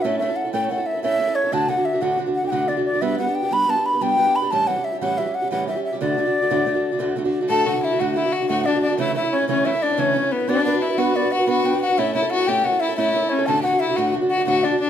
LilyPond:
<<
  \new Staff \with { instrumentName = "Flute" } { \time 9/8 \key d \major \tempo 4. = 121 e''8 e''8 fis''8 g''16. g''32 fis''8 e''8 e''4 cis''8 | a''8 fis''8 e''8 fis''8 r8 fis''16. g''32 fis''8 d''8 d''8 | e''8 fis''8 g''8 b''8 a''8 b''8 g''4 b''8 | a''8 fis''8 e''8 fis''8 e''8 fis''8 fis''8 e''8 e''8 |
d''2.~ d''8 r4 | a''8 fis''8 e''8 fis''8 e''8 fis''8 fis''8 d''8 d''8 | e''8 e''8 cis''8 cis''8 e''8 d''8 cis''4 b'8 | d''8 d''8 e''8 fis''8 d''8 fis''8 fis''8 g''8 fis''8 |
e''8 e''8 fis''8 g''8 fis''8 e''8 e''4 cis''8 | a''8 fis''8 e''8 fis''8 r8 fis''8 fis''8 d''8 d''8 | }
  \new Staff \with { instrumentName = "Fiddle" } { \time 9/8 \key d \major r1 r8 | r1 r8 | r1 r8 | r1 r8 |
r1 r8 | a'8 fis'8 e'8 fis'8 e'8 fis'8 fis'8 d'8 d'8 | e'8 e'8 cis'8 cis'8 e'8 d'8 cis'4 b8 | d'4 e'8 fis'4 fis'8 fis'4 fis'8 |
e'8 e'8 fis'8 g'16. g'32 fis'8 e'8 e'4 cis'8 | a'16. g'32 fis'8 e'8 fis'8 r8 fis'8 fis'8 d'8 d'8 | }
  \new Staff \with { instrumentName = "Steel-string acoustic guitar" } { \time 9/8 \key d \major <a, a cis' e' a'>8 <a cis' e' a'>16 <cis' e' a'>8 <cis' e' a'>16 <a, a cis' e' a'>8 <a cis' e' a'>16 <cis' e' a'>8 <cis' e' a'>16 <a, a cis' e' a'>8 <a cis' e' a'>16 <cis' e' a'>8 <cis' e' a'>16 | <d, a, d a d' fis'>8 <d a d' fis'>16 <d a d' fis'>8 <d a d' fis'>16 <d, a, d a d' fis'>8 <d a d' fis'>16 <d a d' fis'>8 <d a d' fis'>16 <d, a, d a d' fis'>8 <d a d' fis'>16 <d a d' fis'>8 <d a d' fis'>16 | <g b d' g'>8 <g b d' g'>16 <b d' g'>8 <b d' g'>16 <g b d' g'>8 <g b d' g'>16 <b d' g'>8 <b d' g'>16 <g b d' g'>8 <g b d' g'>16 <b d' g'>8 <b d' g'>16 | <a, e g cis' g'>8 <e g cis' g'>16 <g cis' g'>8 <g cis' g'>16 <a, e g cis' g'>8 <e g cis' g'>16 <g cis' g'>8 <g cis' g'>16 <a, e g cis' g'>8 <e g cis' g'>16 <g cis' g'>8 <g cis' g'>16 |
<d, a, d a d' fis'>8 <d a d' fis'>16 <d a d' fis'>8 <d a d' fis'>16 <d, a, d a d' fis'>8 <d a d' fis'>16 <d a d' fis'>8 <d a d' fis'>16 <d, a, d a d' fis'>8 <d a d' fis'>16 <d a d' fis'>8 <d a d' fis'>16 | <d, a, d a d' fis'>8 <d a d' fis'>16 <d a d' fis'>8 <d a d' fis'>16 <d, a, d a d' fis'>8 <d a d' fis'>16 <d a d' fis'>8 <d a d' fis'>16 <d, a, d a d' fis'>8 <d a d' fis'>16 <d a d' fis'>8 <d a d' fis'>16 | <cis e a cis' e'>8 <e a cis' e'>16 <a cis' e'>8 <a cis' e'>16 <cis e a cis' e'>8 <e a cis' e'>16 <a cis' e'>8 <a cis' e'>16 <cis e a cis' e'>8 <e a cis' e'>16 <a cis' e'>8 <a cis' e'>16 | <b d' fis' b'>8 <b d' fis' b'>16 <d' fis' b'>8 <d' fis' b'>16 <b d' fis' b'>8 <b d' fis' b'>16 <d' fis' b'>8 <d' fis' b'>16 <b d' fis' b'>8 <b d' fis' b'>16 <d' fis' b'>8 <d' fis' b'>16 |
<a, a cis' e' a'>8 <a cis' e' a'>16 <cis' e' a'>8 <cis' e' a'>16 <a, a cis' e' a'>8 <a cis' e' a'>16 <cis' e' a'>8 <cis' e' a'>16 <a, a cis' e' a'>8 <a cis' e' a'>16 <cis' e' a'>8 <cis' e' a'>16 | <d, a, d a d' fis'>8 <d a d' fis'>16 <d a d' fis'>8 <d a d' fis'>16 <d, a, d a d' fis'>8 <d a d' fis'>16 <d a d' fis'>8 <d a d' fis'>16 <d, a, d a d' fis'>8 <d a d' fis'>16 <d a d' fis'>8 r16 | }
>>